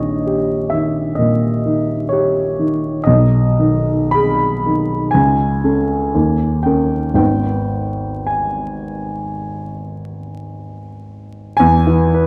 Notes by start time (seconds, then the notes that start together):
Already playing: A#1 D#3 C#5 D#5
0.27 G4
0.70 D#3 E5
1.15 A#2 D#5
1.66 D#3
2.09 G4 C#5
2.59 D#3
3.04 B1 D#5
3.59 D#3
4.11 G#4 B5
4.66 D#3
5.11 C#2 G#5
5.64 C#4 A4
6.15 D#2
6.63 C#4 A#4 G5
7.14 G#1 D#3 B3 B4 G5
8.27 G#5
11.57 E2 G#5
11.87 E3
12.14 B4